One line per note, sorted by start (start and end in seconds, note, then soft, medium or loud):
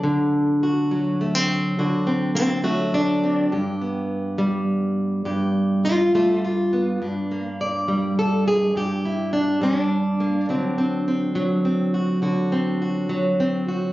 0.00 1.78 D3 medium
0.00 1.38 D4 soft
0.00 0.62 A4 medium
0.63 1.78 F#4 soft
0.91 2.64 F#3 medium
1.21 1.35 A3 soft
1.35 2.06 C4 soft
1.79 3.49 D3 medium
1.79 2.36 F#4 soft
2.07 2.34 C4 medium
2.35 2.63 C4 medium
2.35 2.64 A4 medium
2.64 3.49 F#3 medium
2.64 2.94 A3 medium
2.64 3.52 F#4 medium
2.94 3.52 D4 loud
3.23 3.49 C4 soft
3.52 5.25 G2 medium
3.52 5.25 G4 medium
3.81 6.14 B3 soft
4.38 6.13 G3 medium
5.25 6.97 G2 medium
5.25 5.86 G4 soft
5.85 6.14 F4 medium
5.85 6.72 A4 medium
6.14 6.98 G3 medium
6.14 6.43 A3 medium
6.14 6.43 F4 medium
6.45 7.02 F4 medium
6.73 6.98 B3 soft
7.02 8.75 G2 medium
7.02 9.05 D4 medium
7.32 10.19 A#3 soft
7.61 8.18 D5 medium
7.88 9.60 G3 medium
8.19 8.47 A4 medium
8.48 8.76 G#4 medium
8.76 10.46 G2 medium
8.76 9.63 G4 medium
9.05 9.33 E4 medium
9.33 9.62 D4 loud
9.61 10.45 G3 medium
9.61 11.95 D4 medium
10.20 10.46 A#3 medium
10.49 12.22 D3 medium
10.49 11.35 F#3 medium
10.49 10.78 C4 medium
10.78 11.08 C4 medium
11.08 11.65 C4 soft
11.35 13.08 F#3 medium
11.65 12.51 C4 soft
11.94 12.22 F#4 soft
12.22 13.93 D3 medium
12.22 12.81 F#4 medium
12.52 13.39 C4 soft
12.82 13.67 F#4 soft
13.09 13.93 F#3 medium
13.40 13.93 C4 soft
13.68 13.93 F#4 medium